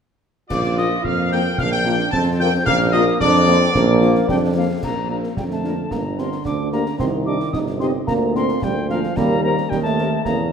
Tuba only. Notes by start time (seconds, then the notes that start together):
0.51 A#1
1.05 F2
1.59 A#1
2.13 F2
2.66 A#1
3.21 F2
3.75 A#1
4.29 F2
4.84 A#1
5.38 F2
5.92 G1
6.45 D2
7.00 C2
7.55 G1
8.09 D2
8.62 D2
9.17 D#2
9.72 D#2
10.26 E2